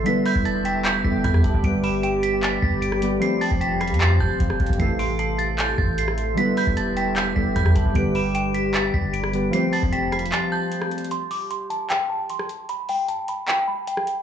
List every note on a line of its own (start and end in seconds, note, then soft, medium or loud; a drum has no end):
0.00 1.01 D3 medium
0.00 1.61 E5 medium
0.05 1.02 G3 medium
0.05 1.03 B3 medium
0.05 1.03 E4 medium
0.05 4.76 G4 medium
0.05 1.04 B4 medium
0.05 1.62 D6 medium
0.05 0.22 B6 loud
0.05 closed hi-hat medium
0.26 0.44 B5 medium
0.26 0.41 G6 medium
0.26 open hi-hat medium
0.35 1.02 E1 loud
0.35 kick medium
0.45 0.64 A5 medium
0.45 0.61 A6 medium
0.45 closed hi-hat medium
0.65 1.21 G5 medium
0.65 0.81 B6 medium
0.65 closed hi-hat medium
0.85 1.00 G6 medium
0.85 clap loud
0.85 closed hi-hat medium
1.03 1.24 E1 loud
1.03 1.61 D3 medium
1.03 1.62 G3 soft
1.03 1.63 B3 soft
1.03 1.64 E4 soft
1.03 1.64 A4 medium
1.03 1.20 B6 medium
1.03 kick medium
1.24 1.43 E2 loud
1.24 1.43 B5 medium
1.24 1.40 G6 medium
1.24 kick loud
1.24 closed hi-hat medium
1.34 cross-stick medium
1.44 1.54 E1 loud
1.44 1.63 A5 medium
1.44 kick medium
1.44 closed hi-hat medium
1.54 1.63 E1 loud
1.54 kick loud
1.62 2.59 G1 loud
1.62 2.98 D3 medium
1.62 2.99 G3 medium
1.62 2.99 B3 medium
1.62 3.00 G4 medium
1.62 3.20 D5 medium
1.62 3.20 B5 loud
1.62 1.80 D7 loud
1.62 kick loud
1.62 closed hi-hat medium
1.67 3.01 B4 medium
1.84 2.02 B5 medium
1.84 1.99 E7 medium
1.84 open hi-hat medium
2.03 2.40 G5 medium
2.03 2.19 D7 medium
2.03 closed hi-hat medium
2.23 2.38 B6 medium
2.23 closed hi-hat medium
2.43 2.58 A6 loud
2.43 clap loud
2.43 closed hi-hat medium
2.62 3.19 G1 loud
2.62 2.78 B6 medium
2.62 kick medium
2.82 2.98 D7 medium
2.82 closed hi-hat medium
2.92 cross-stick medium
3.01 3.21 D3 medium
3.01 3.22 G3 soft
3.01 3.22 B3 soft
3.01 3.22 G4 soft
3.01 3.23 B4 medium
3.01 closed hi-hat medium
3.19 4.75 F3 medium
3.19 4.76 A3 medium
3.19 4.76 C4 medium
3.19 4.77 G4 medium
3.19 4.78 F5 medium
3.19 4.78 A5 medium
3.19 3.37 C7 loud
3.19 closed hi-hat medium
3.24 4.78 C5 medium
3.41 3.60 A5 medium
3.41 3.57 A6 medium
3.41 open hi-hat medium
3.51 3.92 F1 loud
3.51 kick loud
3.61 3.80 G5 medium
3.61 3.76 B6 medium
3.61 closed hi-hat medium
3.81 4.00 B5 medium
3.81 3.96 C7 medium
3.81 cross-stick medium
3.81 closed hi-hat medium
3.88 4.19 F2 loud
3.88 closed hi-hat medium
3.94 closed hi-hat medium
4.00 4.19 C6 medium
4.00 4.16 A6 loud
4.00 clap loud
4.00 closed hi-hat medium
4.20 4.39 F1 loud
4.20 4.39 A5 medium
4.20 4.76 G6 medium
4.20 kick medium
4.40 4.59 E1 loud
4.40 kick loud
4.40 closed hi-hat medium
4.50 cross-stick medium
4.60 4.69 F1 loud
4.60 kick medium
4.60 closed hi-hat soft
4.66 4.79 F1 loud
4.66 kick loud
4.66 closed hi-hat medium
4.73 6.33 C3 medium
4.73 closed hi-hat medium
4.78 5.74 A1 loud
4.78 6.34 E3 medium
4.78 6.34 A3 medium
4.78 6.35 E4 medium
4.78 6.36 A4 medium
4.78 6.35 A4 medium
4.78 7.92 E5 medium
4.78 6.36 C6 medium
4.78 4.95 C7 loud
4.78 kick loud
4.78 closed hi-hat medium
4.99 5.18 C6 medium
4.99 5.15 D7 medium
4.99 open hi-hat medium
5.19 5.56 A5 medium
5.19 5.35 C7 medium
5.19 closed hi-hat medium
5.38 5.54 A6 medium
5.38 closed hi-hat medium
5.58 5.74 G6 medium
5.58 clap loud
5.58 closed hi-hat medium
5.78 6.35 A1 loud
5.78 5.94 A6 medium
5.78 kick medium
5.98 6.14 C7 medium
5.98 closed hi-hat medium
6.08 cross-stick medium
6.18 closed hi-hat medium
6.35 7.33 D3 medium
6.35 7.33 G3 medium
6.35 7.34 B3 medium
6.35 7.35 E4 medium
6.35 11.07 G4 medium
6.35 7.94 D6 loud
6.35 6.53 B6 loud
6.35 closed hi-hat medium
6.40 7.35 B4 medium
6.57 6.76 B5 medium
6.57 6.73 G6 medium
6.57 open hi-hat medium
6.67 7.33 E1 loud
6.67 kick medium
6.77 6.96 A5 medium
6.77 6.92 A6 medium
6.77 closed hi-hat medium
6.97 7.52 G5 medium
6.97 7.12 B6 medium
6.97 closed hi-hat medium
7.16 7.32 G6 medium
7.16 clap loud
7.16 closed hi-hat medium
7.35 7.55 E1 loud
7.35 7.92 D3 medium
7.35 7.94 G3 soft
7.35 7.95 B3 medium
7.35 7.96 E4 soft
7.35 7.96 A4 medium
7.35 7.52 B6 medium
7.35 kick loud
7.56 7.75 E2 loud
7.56 7.75 B5 medium
7.56 7.71 G6 medium
7.56 kick loud
7.56 closed hi-hat medium
7.66 cross-stick medium
7.76 7.85 E1 loud
7.76 7.94 A5 medium
7.76 kick loud
7.76 closed hi-hat medium
7.85 7.95 E1 loud
7.85 kick loud
7.94 8.90 G1 loud
7.94 9.30 D3 medium
7.94 9.30 G3 medium
7.94 9.31 B3 medium
7.94 9.32 G4 medium
7.94 9.52 D5 medium
7.94 9.52 B5 medium
7.94 8.11 D7 loud
7.94 kick loud
7.94 closed hi-hat medium
7.98 9.32 B4 medium
8.15 8.34 B5 medium
8.15 8.31 E7 medium
8.15 open hi-hat medium
8.35 8.72 G5 medium
8.35 8.50 D7 loud
8.35 closed hi-hat medium
8.54 8.70 B6 medium
8.54 closed hi-hat medium
8.74 8.90 A6 loud
8.74 clap loud
8.74 closed hi-hat medium
8.94 9.51 G1 loud
8.94 9.09 B6 medium
8.94 kick loud
9.13 9.29 D7 medium
9.13 closed hi-hat medium
9.24 cross-stick loud
9.33 9.53 D3 soft
9.33 9.53 G3 soft
9.33 9.54 B3 soft
9.33 9.53 G4 soft
9.33 9.54 B4 medium
9.33 closed hi-hat medium
9.51 11.07 F3 medium
9.51 11.07 A3 medium
9.51 11.08 C4 medium
9.51 11.09 G4 medium
9.51 11.10 F5 medium
9.51 11.10 A5 medium
9.51 9.69 C7 loud
9.51 closed hi-hat medium
9.56 11.09 C5 medium
9.73 9.92 A5 medium
9.73 9.88 A6 medium
9.73 open hi-hat medium
9.83 10.32 F1 loud
9.83 kick medium
9.92 10.11 G5 medium
9.92 10.08 B6 medium
9.92 closed hi-hat medium
10.12 10.31 B5 medium
10.12 10.28 C7 medium
10.12 cross-stick medium
10.12 closed hi-hat medium
10.19 closed hi-hat medium
10.26 closed hi-hat medium
10.32 10.51 C6 medium
10.32 10.48 A6 loud
10.32 clap loud
10.32 closed hi-hat medium
10.52 10.71 A5 medium
10.52 11.08 G6 medium
10.72 closed hi-hat medium
10.82 cross-stick medium
10.91 closed hi-hat soft
10.98 closed hi-hat medium
11.05 closed hi-hat medium
11.11 11.27 C6 loud
11.11 closed hi-hat medium
11.31 11.46 D6 medium
11.31 open hi-hat medium
11.51 11.66 C6 medium
11.51 closed hi-hat medium
11.70 11.86 A5 medium
11.70 closed hi-hat medium
11.90 12.05 G5 medium
11.90 clap loud
11.90 closed hi-hat medium
12.10 12.25 A5 medium
12.30 12.45 C6 medium
12.30 closed hi-hat medium
12.39 cross-stick medium
12.49 closed hi-hat medium
12.69 12.85 B5 loud
12.69 closed hi-hat medium
12.89 13.05 G5 medium
12.89 open hi-hat medium
13.08 13.24 A5 medium
13.08 closed hi-hat medium
13.28 13.44 B5 medium
13.28 closed hi-hat medium
13.48 13.63 G5 medium
13.48 clap loud
13.48 closed hi-hat medium
13.68 13.83 B5 medium
13.87 14.03 G5 medium
13.87 closed hi-hat medium
13.97 cross-stick medium
14.07 closed hi-hat medium